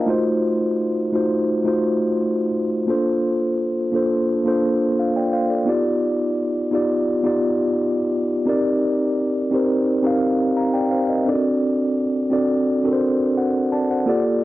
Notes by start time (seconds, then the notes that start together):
Already playing: A#3 D4 D#4 F4 A#4 C5 D5 D#5 F5 G5 A5 A#5
0.06 A3 D#4 F4 F#4 C5
1.12 A3 D#4 F4 F#4 C5
1.64 A3 D#4 F4 F#4 C5
2.87 A#3 D4 F4 A4 C5
3.92 A#3 D4 F4 A4
3.96 C5
4.44 A#3 D4 F4 A4 C5
4.99 C5 F5
5.16 D5 G5
5.33 C5 F5
5.50 A4 D5
5.65 B3 D#4 F4 G4 D5
6.71 B3 D#4 F4 G4 D5
7.23 B3 D#4 F4 G4 D5
8.46 C4 D#4 G4 A#4 D5
9.51 C4 D#4 G4 A#4 C5
10.02 C4 D#4 G4 A#4 F5
10.57 F5 A#5
10.74 D5 G5
10.91 C5 F5
11.09 A#4 D#5
11.26 C4 D4 D#4 A4 D5
11.34 F#4
12.30 C4 D4 F#4 A4 D5
12.84 C4 D4 F#4 A4 A#4
12.93 C5
13.37 C5 F#5
13.72 D5 A5
13.90 C5 F#5
14.06 A#3 F4 G4 A4 D5